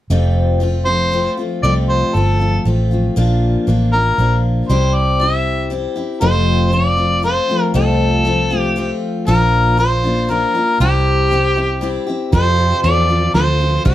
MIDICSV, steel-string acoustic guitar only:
0, 0, Header, 1, 2, 480
1, 0, Start_track
1, 0, Key_signature, -1, "major"
1, 0, Tempo, 509338
1, 93, Time_signature, 3, 2, 24, 8
1, 13143, End_track
2, 0, Start_track
2, 0, Title_t, "Steel-string acoustic guitar"
2, 0, Program_c, 0, 25
2, 95, Note_on_c, 0, 41, 72
2, 98, Note_on_c, 0, 48, 80
2, 102, Note_on_c, 0, 53, 81
2, 102, Note_on_c, 0, 57, 76
2, 108, Note_on_c, 0, 60, 78
2, 114, Note_on_c, 0, 65, 84
2, 561, Note_off_c, 0, 53, 0
2, 565, Note_off_c, 0, 57, 0
2, 565, Note_on_c, 0, 53, 53
2, 573, Note_off_c, 0, 60, 0
2, 575, Note_off_c, 0, 41, 0
2, 576, Note_on_c, 0, 57, 65
2, 577, Note_off_c, 0, 48, 0
2, 584, Note_on_c, 0, 60, 58
2, 589, Note_off_c, 0, 65, 0
2, 592, Note_on_c, 0, 65, 64
2, 791, Note_off_c, 0, 65, 0
2, 802, Note_on_c, 0, 65, 35
2, 804, Note_off_c, 0, 60, 0
2, 810, Note_off_c, 0, 53, 0
2, 812, Note_off_c, 0, 57, 0
2, 815, Note_on_c, 0, 60, 42
2, 823, Note_on_c, 0, 57, 36
2, 828, Note_on_c, 0, 53, 33
2, 1040, Note_off_c, 0, 53, 0
2, 1049, Note_off_c, 0, 65, 0
2, 1050, Note_off_c, 0, 57, 0
2, 1051, Note_on_c, 0, 53, 49
2, 1055, Note_off_c, 0, 60, 0
2, 1061, Note_on_c, 0, 57, 54
2, 1069, Note_on_c, 0, 60, 61
2, 1074, Note_on_c, 0, 65, 56
2, 1284, Note_off_c, 0, 65, 0
2, 1294, Note_off_c, 0, 53, 0
2, 1295, Note_on_c, 0, 65, 38
2, 1297, Note_off_c, 0, 60, 0
2, 1299, Note_off_c, 0, 57, 0
2, 1309, Note_on_c, 0, 60, 36
2, 1312, Note_on_c, 0, 57, 33
2, 1324, Note_on_c, 0, 53, 32
2, 1536, Note_off_c, 0, 53, 0
2, 1536, Note_off_c, 0, 65, 0
2, 1538, Note_off_c, 0, 60, 0
2, 1539, Note_on_c, 0, 41, 62
2, 1540, Note_off_c, 0, 57, 0
2, 1541, Note_on_c, 0, 48, 63
2, 1547, Note_on_c, 0, 53, 67
2, 1550, Note_on_c, 0, 60, 76
2, 1551, Note_on_c, 0, 57, 75
2, 1553, Note_on_c, 0, 65, 72
2, 2015, Note_off_c, 0, 53, 0
2, 2018, Note_off_c, 0, 41, 0
2, 2019, Note_off_c, 0, 48, 0
2, 2019, Note_on_c, 0, 53, 49
2, 2020, Note_off_c, 0, 57, 0
2, 2024, Note_off_c, 0, 60, 0
2, 2031, Note_on_c, 0, 57, 47
2, 2037, Note_on_c, 0, 60, 60
2, 2040, Note_off_c, 0, 65, 0
2, 2044, Note_on_c, 0, 65, 65
2, 2244, Note_off_c, 0, 65, 0
2, 2253, Note_off_c, 0, 60, 0
2, 2256, Note_on_c, 0, 65, 38
2, 2258, Note_off_c, 0, 53, 0
2, 2264, Note_off_c, 0, 57, 0
2, 2265, Note_on_c, 0, 60, 39
2, 2275, Note_on_c, 0, 57, 36
2, 2281, Note_on_c, 0, 53, 36
2, 2490, Note_off_c, 0, 53, 0
2, 2497, Note_off_c, 0, 65, 0
2, 2499, Note_off_c, 0, 57, 0
2, 2501, Note_on_c, 0, 53, 55
2, 2502, Note_off_c, 0, 60, 0
2, 2510, Note_on_c, 0, 57, 56
2, 2515, Note_on_c, 0, 60, 51
2, 2524, Note_on_c, 0, 65, 59
2, 2731, Note_off_c, 0, 65, 0
2, 2739, Note_off_c, 0, 60, 0
2, 2740, Note_off_c, 0, 53, 0
2, 2742, Note_on_c, 0, 65, 42
2, 2744, Note_off_c, 0, 57, 0
2, 2750, Note_on_c, 0, 60, 41
2, 2759, Note_on_c, 0, 57, 37
2, 2766, Note_on_c, 0, 53, 36
2, 2973, Note_off_c, 0, 53, 0
2, 2979, Note_on_c, 0, 46, 73
2, 2981, Note_off_c, 0, 65, 0
2, 2982, Note_off_c, 0, 57, 0
2, 2984, Note_on_c, 0, 53, 71
2, 2985, Note_off_c, 0, 60, 0
2, 2986, Note_on_c, 0, 58, 84
2, 2990, Note_on_c, 0, 62, 89
2, 2995, Note_on_c, 0, 65, 83
2, 3446, Note_off_c, 0, 53, 0
2, 3455, Note_off_c, 0, 58, 0
2, 3458, Note_on_c, 0, 53, 58
2, 3459, Note_off_c, 0, 46, 0
2, 3465, Note_off_c, 0, 62, 0
2, 3466, Note_on_c, 0, 58, 61
2, 3467, Note_off_c, 0, 65, 0
2, 3476, Note_on_c, 0, 62, 69
2, 3482, Note_on_c, 0, 65, 67
2, 3689, Note_off_c, 0, 65, 0
2, 3699, Note_off_c, 0, 53, 0
2, 3700, Note_on_c, 0, 65, 39
2, 3703, Note_off_c, 0, 58, 0
2, 3705, Note_off_c, 0, 62, 0
2, 3717, Note_on_c, 0, 62, 37
2, 3940, Note_off_c, 0, 65, 0
2, 3942, Note_on_c, 0, 53, 54
2, 3948, Note_off_c, 0, 62, 0
2, 3951, Note_on_c, 0, 58, 54
2, 3960, Note_on_c, 0, 62, 59
2, 3967, Note_on_c, 0, 65, 57
2, 4421, Note_off_c, 0, 53, 0
2, 4424, Note_on_c, 0, 48, 74
2, 4426, Note_off_c, 0, 58, 0
2, 4428, Note_on_c, 0, 55, 82
2, 4429, Note_off_c, 0, 62, 0
2, 4433, Note_on_c, 0, 60, 76
2, 4433, Note_on_c, 0, 64, 78
2, 4434, Note_off_c, 0, 65, 0
2, 4440, Note_on_c, 0, 67, 79
2, 4885, Note_off_c, 0, 55, 0
2, 4897, Note_on_c, 0, 55, 61
2, 4899, Note_off_c, 0, 60, 0
2, 4903, Note_off_c, 0, 48, 0
2, 4903, Note_off_c, 0, 64, 0
2, 4910, Note_off_c, 0, 67, 0
2, 4911, Note_on_c, 0, 60, 61
2, 4914, Note_on_c, 0, 64, 63
2, 4922, Note_on_c, 0, 67, 54
2, 5361, Note_off_c, 0, 55, 0
2, 5371, Note_off_c, 0, 60, 0
2, 5372, Note_on_c, 0, 55, 54
2, 5380, Note_off_c, 0, 64, 0
2, 5382, Note_on_c, 0, 60, 59
2, 5387, Note_off_c, 0, 67, 0
2, 5392, Note_on_c, 0, 64, 61
2, 5399, Note_on_c, 0, 67, 54
2, 5602, Note_off_c, 0, 67, 0
2, 5613, Note_off_c, 0, 64, 0
2, 5613, Note_on_c, 0, 67, 42
2, 5616, Note_off_c, 0, 55, 0
2, 5621, Note_off_c, 0, 60, 0
2, 5624, Note_on_c, 0, 64, 43
2, 5634, Note_on_c, 0, 60, 33
2, 5850, Note_on_c, 0, 48, 81
2, 5851, Note_on_c, 0, 41, 78
2, 5853, Note_off_c, 0, 60, 0
2, 5857, Note_off_c, 0, 67, 0
2, 5857, Note_on_c, 0, 53, 76
2, 5858, Note_on_c, 0, 57, 84
2, 5861, Note_off_c, 0, 64, 0
2, 5863, Note_on_c, 0, 65, 78
2, 5864, Note_on_c, 0, 60, 83
2, 6326, Note_off_c, 0, 53, 0
2, 6329, Note_off_c, 0, 57, 0
2, 6330, Note_on_c, 0, 53, 56
2, 6335, Note_off_c, 0, 48, 0
2, 6335, Note_off_c, 0, 60, 0
2, 6336, Note_off_c, 0, 41, 0
2, 6340, Note_on_c, 0, 57, 66
2, 6347, Note_on_c, 0, 60, 57
2, 6349, Note_off_c, 0, 65, 0
2, 6353, Note_on_c, 0, 65, 60
2, 6558, Note_off_c, 0, 65, 0
2, 6567, Note_off_c, 0, 60, 0
2, 6569, Note_on_c, 0, 65, 43
2, 6573, Note_off_c, 0, 57, 0
2, 6575, Note_off_c, 0, 53, 0
2, 6579, Note_on_c, 0, 60, 46
2, 6585, Note_on_c, 0, 57, 35
2, 6594, Note_on_c, 0, 53, 37
2, 6798, Note_off_c, 0, 53, 0
2, 6806, Note_off_c, 0, 57, 0
2, 6810, Note_on_c, 0, 53, 57
2, 6815, Note_off_c, 0, 60, 0
2, 6815, Note_off_c, 0, 65, 0
2, 6818, Note_on_c, 0, 57, 57
2, 6827, Note_on_c, 0, 60, 63
2, 6834, Note_on_c, 0, 65, 67
2, 7040, Note_off_c, 0, 65, 0
2, 7049, Note_off_c, 0, 60, 0
2, 7052, Note_on_c, 0, 65, 38
2, 7055, Note_off_c, 0, 53, 0
2, 7059, Note_off_c, 0, 57, 0
2, 7061, Note_on_c, 0, 60, 41
2, 7070, Note_on_c, 0, 57, 35
2, 7075, Note_on_c, 0, 53, 34
2, 7288, Note_off_c, 0, 53, 0
2, 7293, Note_on_c, 0, 41, 85
2, 7295, Note_off_c, 0, 57, 0
2, 7295, Note_on_c, 0, 48, 72
2, 7296, Note_off_c, 0, 65, 0
2, 7298, Note_off_c, 0, 60, 0
2, 7300, Note_on_c, 0, 53, 76
2, 7306, Note_on_c, 0, 57, 84
2, 7308, Note_on_c, 0, 65, 90
2, 7309, Note_on_c, 0, 60, 83
2, 7768, Note_off_c, 0, 57, 0
2, 7769, Note_off_c, 0, 53, 0
2, 7773, Note_on_c, 0, 53, 60
2, 7776, Note_off_c, 0, 41, 0
2, 7778, Note_off_c, 0, 48, 0
2, 7778, Note_off_c, 0, 60, 0
2, 7780, Note_on_c, 0, 57, 59
2, 7789, Note_on_c, 0, 60, 60
2, 7791, Note_off_c, 0, 65, 0
2, 7795, Note_on_c, 0, 65, 71
2, 8003, Note_off_c, 0, 65, 0
2, 8012, Note_off_c, 0, 60, 0
2, 8014, Note_on_c, 0, 65, 54
2, 8016, Note_off_c, 0, 53, 0
2, 8020, Note_off_c, 0, 57, 0
2, 8023, Note_on_c, 0, 60, 47
2, 8032, Note_on_c, 0, 57, 46
2, 8041, Note_on_c, 0, 53, 39
2, 8242, Note_off_c, 0, 53, 0
2, 8253, Note_off_c, 0, 57, 0
2, 8254, Note_on_c, 0, 53, 64
2, 8257, Note_off_c, 0, 65, 0
2, 8261, Note_off_c, 0, 60, 0
2, 8264, Note_on_c, 0, 57, 68
2, 8273, Note_on_c, 0, 60, 67
2, 8277, Note_on_c, 0, 65, 71
2, 8731, Note_off_c, 0, 53, 0
2, 8732, Note_on_c, 0, 46, 79
2, 8740, Note_off_c, 0, 57, 0
2, 8740, Note_off_c, 0, 65, 0
2, 8742, Note_on_c, 0, 53, 72
2, 8743, Note_on_c, 0, 58, 73
2, 8746, Note_off_c, 0, 60, 0
2, 8751, Note_on_c, 0, 62, 85
2, 8751, Note_on_c, 0, 65, 90
2, 9201, Note_off_c, 0, 53, 0
2, 9211, Note_off_c, 0, 58, 0
2, 9212, Note_on_c, 0, 53, 61
2, 9215, Note_off_c, 0, 46, 0
2, 9222, Note_off_c, 0, 62, 0
2, 9223, Note_on_c, 0, 58, 59
2, 9225, Note_off_c, 0, 65, 0
2, 9233, Note_on_c, 0, 62, 56
2, 9239, Note_on_c, 0, 65, 67
2, 9450, Note_off_c, 0, 65, 0
2, 9456, Note_off_c, 0, 53, 0
2, 9460, Note_off_c, 0, 62, 0
2, 9461, Note_off_c, 0, 58, 0
2, 9461, Note_on_c, 0, 65, 52
2, 9471, Note_on_c, 0, 62, 41
2, 9487, Note_on_c, 0, 58, 34
2, 9693, Note_off_c, 0, 58, 0
2, 9693, Note_on_c, 0, 53, 62
2, 9700, Note_off_c, 0, 62, 0
2, 9700, Note_off_c, 0, 65, 0
2, 9704, Note_on_c, 0, 58, 55
2, 9711, Note_on_c, 0, 62, 60
2, 9719, Note_on_c, 0, 65, 64
2, 9928, Note_off_c, 0, 65, 0
2, 9936, Note_off_c, 0, 53, 0
2, 9939, Note_off_c, 0, 62, 0
2, 9939, Note_on_c, 0, 65, 48
2, 9941, Note_off_c, 0, 58, 0
2, 9951, Note_on_c, 0, 62, 40
2, 9963, Note_on_c, 0, 58, 35
2, 10179, Note_off_c, 0, 65, 0
2, 10180, Note_on_c, 0, 48, 76
2, 10184, Note_off_c, 0, 62, 0
2, 10186, Note_off_c, 0, 58, 0
2, 10186, Note_on_c, 0, 55, 86
2, 10190, Note_on_c, 0, 60, 76
2, 10194, Note_on_c, 0, 64, 85
2, 10195, Note_on_c, 0, 67, 81
2, 10644, Note_off_c, 0, 55, 0
2, 10655, Note_on_c, 0, 55, 53
2, 10659, Note_off_c, 0, 48, 0
2, 10661, Note_off_c, 0, 60, 0
2, 10663, Note_off_c, 0, 64, 0
2, 10665, Note_on_c, 0, 60, 60
2, 10667, Note_off_c, 0, 67, 0
2, 10674, Note_on_c, 0, 64, 66
2, 10682, Note_on_c, 0, 67, 67
2, 10880, Note_off_c, 0, 67, 0
2, 10892, Note_off_c, 0, 64, 0
2, 10892, Note_on_c, 0, 67, 51
2, 10897, Note_off_c, 0, 55, 0
2, 10902, Note_off_c, 0, 60, 0
2, 10903, Note_on_c, 0, 64, 49
2, 10914, Note_on_c, 0, 60, 40
2, 11129, Note_off_c, 0, 60, 0
2, 11129, Note_on_c, 0, 55, 63
2, 11135, Note_off_c, 0, 67, 0
2, 11137, Note_off_c, 0, 64, 0
2, 11140, Note_on_c, 0, 60, 62
2, 11148, Note_on_c, 0, 64, 71
2, 11154, Note_on_c, 0, 67, 66
2, 11360, Note_off_c, 0, 67, 0
2, 11371, Note_on_c, 0, 67, 46
2, 11374, Note_off_c, 0, 55, 0
2, 11374, Note_off_c, 0, 64, 0
2, 11379, Note_off_c, 0, 60, 0
2, 11386, Note_on_c, 0, 64, 42
2, 11397, Note_on_c, 0, 60, 45
2, 11614, Note_on_c, 0, 41, 75
2, 11615, Note_off_c, 0, 67, 0
2, 11617, Note_off_c, 0, 60, 0
2, 11620, Note_on_c, 0, 48, 77
2, 11622, Note_off_c, 0, 64, 0
2, 11623, Note_on_c, 0, 53, 79
2, 11629, Note_on_c, 0, 60, 75
2, 11629, Note_on_c, 0, 65, 71
2, 11636, Note_on_c, 0, 69, 88
2, 12087, Note_off_c, 0, 53, 0
2, 12096, Note_off_c, 0, 41, 0
2, 12098, Note_on_c, 0, 53, 52
2, 12099, Note_off_c, 0, 48, 0
2, 12103, Note_off_c, 0, 65, 0
2, 12104, Note_off_c, 0, 60, 0
2, 12107, Note_off_c, 0, 69, 0
2, 12108, Note_on_c, 0, 60, 58
2, 12116, Note_on_c, 0, 65, 61
2, 12122, Note_on_c, 0, 69, 59
2, 12322, Note_off_c, 0, 69, 0
2, 12330, Note_off_c, 0, 65, 0
2, 12333, Note_on_c, 0, 69, 45
2, 12337, Note_off_c, 0, 60, 0
2, 12338, Note_off_c, 0, 53, 0
2, 12341, Note_on_c, 0, 65, 40
2, 12349, Note_on_c, 0, 60, 39
2, 12357, Note_on_c, 0, 53, 33
2, 12562, Note_off_c, 0, 53, 0
2, 12570, Note_off_c, 0, 60, 0
2, 12573, Note_on_c, 0, 53, 61
2, 12575, Note_off_c, 0, 69, 0
2, 12579, Note_off_c, 0, 65, 0
2, 12582, Note_on_c, 0, 60, 64
2, 12590, Note_on_c, 0, 65, 59
2, 12595, Note_on_c, 0, 69, 59
2, 12803, Note_off_c, 0, 69, 0
2, 12811, Note_off_c, 0, 65, 0
2, 12814, Note_on_c, 0, 69, 43
2, 12815, Note_off_c, 0, 53, 0
2, 12819, Note_off_c, 0, 60, 0
2, 12822, Note_on_c, 0, 65, 41
2, 12830, Note_on_c, 0, 60, 36
2, 12837, Note_on_c, 0, 53, 31
2, 13045, Note_off_c, 0, 60, 0
2, 13050, Note_off_c, 0, 53, 0
2, 13051, Note_on_c, 0, 48, 78
2, 13053, Note_on_c, 0, 55, 82
2, 13056, Note_off_c, 0, 69, 0
2, 13056, Note_on_c, 0, 60, 75
2, 13058, Note_off_c, 0, 65, 0
2, 13062, Note_on_c, 0, 64, 83
2, 13067, Note_on_c, 0, 67, 93
2, 13143, Note_off_c, 0, 48, 0
2, 13143, Note_off_c, 0, 55, 0
2, 13143, Note_off_c, 0, 60, 0
2, 13143, Note_off_c, 0, 64, 0
2, 13143, Note_off_c, 0, 67, 0
2, 13143, End_track
0, 0, End_of_file